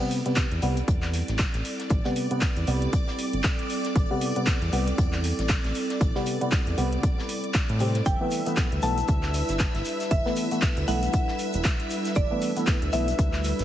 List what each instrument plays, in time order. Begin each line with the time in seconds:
Already playing: ambient pad G3 C4 E4 A4 D5 G5, string machine D5 D6
0.00 synth stab C3 G3 B3
0.11 closed hi-hat, open hi-hat
0.26 synth stab C3 G3 B3, closed hi-hat
0.36 kick, snare, clap, closed hi-hat
0.51 analog synth bass E2, closed hi-hat
0.62 analog synth bass C2, synth stab C3 G3 B3, closed hi-hat, open hi-hat
0.77 closed hi-hat
0.88 analog synth bass E2, kick, closed hi-hat
1.02 snare, clap
1.13 snare, closed hi-hat, open hi-hat
1.28 analog synth bass A1, snare, closed hi-hat
1.39 kick, snare, clap, closed hi-hat
1.53 analog synth bass A1, snare, closed hi-hat
1.64 snare, closed hi-hat, open hi-hat
1.79 snare, closed hi-hat
1.90 analog synth bass A1, kick, closed hi-hat
2.04 synth stab C3 G3 B3, snare
2.16 closed hi-hat, open hi-hat
2.31 synth stab C3 G3 B3, closed hi-hat
2.41 kick, snare, clap, closed hi-hat
2.56 analog synth bass E2, closed hi-hat
2.67 analog synth bass C2, synth stab C3 G3 B3, closed hi-hat, open hi-hat
2.82 closed hi-hat
2.93 kick, closed hi-hat
3.08 snare
3.19 closed hi-hat, open hi-hat
3.33 analog synth bass G1, closed hi-hat
3.44 kick, snare, clap, closed hi-hat
3.59 closed hi-hat
3.70 closed hi-hat, open hi-hat
3.85 snare, closed hi-hat
3.95 analog synth bass A1, kick, closed hi-hat
4.10 synth stab C3 G3 B3
4.21 closed hi-hat, open hi-hat
4.36 synth stab C3 G3 B3, closed hi-hat
4.46 kick, snare, clap, closed hi-hat
4.62 analog synth bass E2, closed hi-hat
4.72 analog synth bass C2, synth stab C3 G3 B3, closed hi-hat, open hi-hat
4.87 closed hi-hat
4.98 analog synth bass E2, kick, closed hi-hat
5.13 snare, clap
5.24 snare, closed hi-hat, open hi-hat
5.39 analog synth bass A1, snare, closed hi-hat
5.49 kick, snare, clap, closed hi-hat
5.64 analog synth bass A1, snare, closed hi-hat
5.75 snare, closed hi-hat, open hi-hat
5.89 snare, closed hi-hat
6.01 analog synth bass A1, kick, closed hi-hat
6.15 synth stab C3 G3 B3, snare
6.26 closed hi-hat, open hi-hat
6.41 synth stab C3 G3 B3, closed hi-hat
6.52 kick, snare, clap, closed hi-hat
6.67 analog synth bass E2, closed hi-hat
6.78 analog synth bass C2, synth stab C3 G3 B3, closed hi-hat, open hi-hat
6.93 closed hi-hat
7.03 kick, closed hi-hat
7.19 snare
7.29 closed hi-hat, open hi-hat
7.44 closed hi-hat
7.54 kick, snare, clap, closed hi-hat
7.69 analog synth bass A2, closed hi-hat
7.79 synth stab C3 G3 C4, closed hi-hat, open hi-hat
7.94 snare, closed hi-hat
8.06 analog synth bass G1, ambient pad D4 E4 B4, string machine E5 E6, synth pluck G5, kick, closed hi-hat, shaker
8.21 synth stab E3 A3 B3
8.31 closed hi-hat, open hi-hat, shaker
8.46 synth stab E3 A3 B3, ambient pad A4, closed hi-hat, shaker
8.57 kick, snare, clap, closed hi-hat, shaker
8.72 analog synth bass D2, closed hi-hat
8.82 analog synth bass B1, synth stab E3 A3 B3, synth pluck A5, closed hi-hat, open hi-hat, shaker
8.94 ambient pad G4, closed hi-hat
8.98 shaker
9.08 analog synth bass D2, kick, closed hi-hat, shaker
9.23 snare, clap
9.34 snare, closed hi-hat, open hi-hat, shaker
9.49 analog synth bass G1, snare, closed hi-hat, shaker
9.59 kick, snare, clap, closed hi-hat, shaker
9.75 analog synth bass G1, snare, closed hi-hat
9.85 snare, closed hi-hat, open hi-hat, shaker
10.00 snare, closed hi-hat, shaker
10.11 analog synth bass G1, synth pluck E5, kick, closed hi-hat, shaker
10.26 synth stab E3 A3 B3, snare
10.36 closed hi-hat, open hi-hat, shaker
10.51 synth stab E3 A3 B3, closed hi-hat, shaker
10.62 kick, snare, clap, closed hi-hat, shaker
10.77 analog synth bass D2, closed hi-hat
10.88 analog synth bass B1, synth stab E3 A3 B3, synth pluck F#5, closed hi-hat, open hi-hat, shaker
11.03 closed hi-hat, shaker
11.13 kick, closed hi-hat, shaker
11.28 snare
11.39 closed hi-hat, open hi-hat, shaker
11.53 analog synth bass E1, closed hi-hat, shaker
11.64 kick, snare, clap, closed hi-hat, shaker
11.80 closed hi-hat
11.90 closed hi-hat, open hi-hat, shaker
12.05 snare, closed hi-hat, shaker
12.15 analog synth bass G1, synth pluck D5, kick, closed hi-hat, shaker
12.31 synth stab E3 A3 B3
12.42 closed hi-hat, open hi-hat, shaker
12.56 synth stab E3 A3 B3, closed hi-hat, shaker
12.67 kick, snare, clap, closed hi-hat, shaker
12.82 analog synth bass D2, closed hi-hat
12.93 analog synth bass B1, synth stab E3 A3 B3, synth pluck E5, closed hi-hat, open hi-hat, shaker
13.08 closed hi-hat, shaker
13.19 analog synth bass D2, kick, closed hi-hat, shaker
13.33 snare, clap
13.44 snare, closed hi-hat, open hi-hat, shaker
13.59 analog synth bass G1, snare, closed hi-hat, shaker